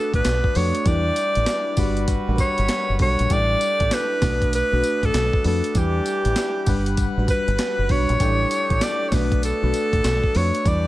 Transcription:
Already playing: A3 B3 D4 F#4 A4 B4
0.14 A1 B4, kick, closed hi-hat
0.25 B1, snare, clap, closed hi-hat, tambourine
0.44 kick
0.55 F2 A3 D4 F#4 B4 C#5, open hi-hat
0.75 closed hi-hat
0.86 E2 E3 G3 D4 E4 G4 A#4 D5, kick, closed hi-hat, tambourine
0.94 B4
1.16 closed hi-hat, tambourine
1.35 A1, closed hi-hat
1.46 snare, clap, closed hi-hat, tambourine
1.77 G1 G3 D4 F#4 B4, kick, open hi-hat, tambourine
1.97 closed hi-hat
2.08 kick, closed hi-hat, tambourine
2.28 A1 G3 D4 F#4 A#4
2.36 B4, kick, closed hi-hat, tambourine
2.40 C#5
2.58 G1, closed hi-hat
2.68 snare, clap, closed hi-hat, tambourine
2.89 F#1
2.99 B1 G3 D4 F#4 A4 C#5, kick, open hi-hat
3.19 A#1, closed hi-hat
3.30 A1 G3 A3 D4 E4 G4 A4 D5, kick, closed hi-hat, tambourine
3.61 closed hi-hat, tambourine
3.80 A1, kick, closed hi-hat
3.91 B4, snare, clap, closed hi-hat, tambourine
4.22 B1 A3 B3 D4 F#4 B4, kick, snare, open hi-hat, tambourine
4.42 kick, closed hi-hat
4.53 B4, closed hi-hat, tambourine
4.72 B1 A3 D4 F#4 B4
4.84 closed hi-hat, tambourine
5.03 A1 A4, kick, closed hi-hat
5.14 B1, snare, clap, closed hi-hat, tambourine
5.33 kick
5.44 F2 A3 D4 F#4 A4 B4, open hi-hat
5.64 closed hi-hat
5.75 E2 E3 G3 D4 E4 G4 B4, kick, closed hi-hat, tambourine
6.06 closed hi-hat, tambourine
6.25 A1, closed hi-hat
6.36 snare, clap, closed hi-hat, tambourine
6.66 G1 G3 D4 B4 F#5, kick, open hi-hat, tambourine
6.86 closed hi-hat
6.97 kick, closed hi-hat, tambourine
7.17 A1 G3 D4 F#4 B4
7.28 B4, kick, closed hi-hat, tambourine
7.48 G1, closed hi-hat
7.59 snare, clap, closed hi-hat, tambourine
7.79 F#1
7.89 B1 G3 D4 F#4 B4 C#5, kick, open hi-hat
8.09 A#1, closed hi-hat
8.20 A1 G3 A3 D4 E4 G4 A4, kick, closed hi-hat, tambourine
8.51 closed hi-hat, tambourine
8.70 A1, kick, closed hi-hat
8.81 D5, snare, clap, closed hi-hat, tambourine
9.09 B1 A3 B3 C#5, kick, snare, open hi-hat, tambourine
9.13 D4 F#4 B4
9.32 kick, closed hi-hat
9.43 A4, closed hi-hat, tambourine
9.62 B1 A3 D4 F#4 B4
9.74 closed hi-hat, tambourine
9.93 A1, kick, closed hi-hat
10.04 B1, snare, clap, closed hi-hat, tambourine
10.24 kick
10.35 F2 A3 D4 F#4 B4 C#5, open hi-hat
10.55 closed hi-hat
10.66 E2 E3 G3 D4 E4 G4 B4 D5, kick, closed hi-hat, tambourine

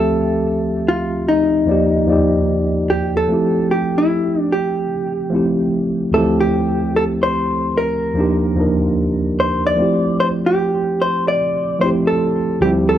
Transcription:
Already playing: D2 F3 A3 C4 G4 A4 E5
0.89 F4
1.29 D#4
1.66 D#2 F3 A#3 D5
1.70 D#4 G4
2.06 D#2 F3 A#3
2.10 D#4 G4 D5
2.90 G4
3.17 A4
3.28 F3 A3 C4
3.32 E4 G4
3.71 G4
3.98 E4
4.41 D4
4.52 G4
5.30 F3 A3 C4
5.34 E4 G4
6.11 D2 E3 A3 C4 A4
6.16 F3 E4 G4
6.40 G4
6.96 A4
7.23 C5
7.78 A#4
8.14 D#2 F3 A#3 D4
8.19 D#4 G4
8.55 D#2 F3 A#3 D4
8.60 D#4 A#4
9.40 C5
9.67 D5
9.76 F3 A3 C4
9.81 E4 G4
10.20 C5
10.46 G4
11.02 C5
11.28 D5
11.79 F3 A3 C4 C5
11.84 E4 G4
12.07 A4
12.60 D2 F3 G3 C4 G4
12.65 E4 G4
12.89 A4

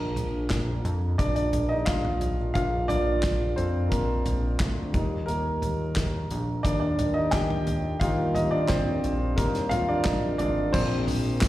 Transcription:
Already playing: A#1 F3 A#3 D4 A#4
0.16 closed hi-hat, floor tom
0.50 kick, snare, clap, closed hi-hat
0.85 F2, closed hi-hat
1.18 A#1 D4 D5, kick, closed hi-hat
1.35 D4 D5, closed hi-hat
1.53 closed hi-hat, floor tom
1.69 D#4 D#5
1.86 F4 F5, kick, snare, clap, closed hi-hat
2.05 floor tom
2.21 closed hi-hat, floor tom
2.54 A#1 F4 F5, kick, closed hi-hat
2.88 F3 A#3 D4 D5, closed hi-hat, floor tom
3.23 kick, snare, clap, closed hi-hat
3.56 F2 C4 C5, closed hi-hat
3.89 A#1 A#3 A#4, kick, closed hi-hat
4.26 closed hi-hat, floor tom
4.59 D2, kick, snare, clap, closed hi-hat
4.93 D#2 G3 A#3 D#4, kick, closed hi-hat, floor tom
5.26 A#3 A#4, closed hi-hat
5.62 closed hi-hat, floor tom
5.96 kick, snare, clap, closed hi-hat
6.31 A#1, closed hi-hat
6.63 D#2 D4 D5, kick, closed hi-hat
6.80 D4 D5
6.99 closed hi-hat, floor tom
7.14 D#4 D#5
7.31 G4 G5, kick, snare, clap, closed hi-hat
7.50 floor tom
7.67 closed hi-hat, floor tom
8.00 D#2 G3 A#3 D#4 F4 F5, kick, closed hi-hat
8.35 D#4 D#5, closed hi-hat, floor tom
8.51 D4 D5
8.68 C4 C5, kick, snare, clap, closed hi-hat
9.04 A#1, closed hi-hat
9.36 D#2 G3 A#3 D#4 A#4, kick, closed hi-hat
9.55 snare, closed hi-hat
9.69 A#3 F4 A#4 F5, closed hi-hat, floor tom
9.89 D4 D5
10.05 A#1 D#4 D#5, kick, snare, clap, closed hi-hat
10.38 G#1 D4 D5, closed hi-hat, floor tom
10.73 A#1 F3 A#3 C4 D4 C5, kick, crash, tambourine
11.08 floor tom, hi-hat pedal, open hi-hat, tambourine
11.41 kick, snare, clap, hi-hat pedal, open hi-hat, tambourine

